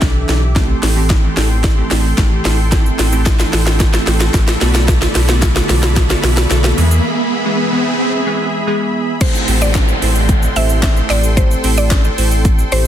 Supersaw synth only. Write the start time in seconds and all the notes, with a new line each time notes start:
Already playing: G4 E5 D6
0.56 A4 G5 C6
4.61 D5 B5
6.78 G#4 E5
9.21 A4 G5 C6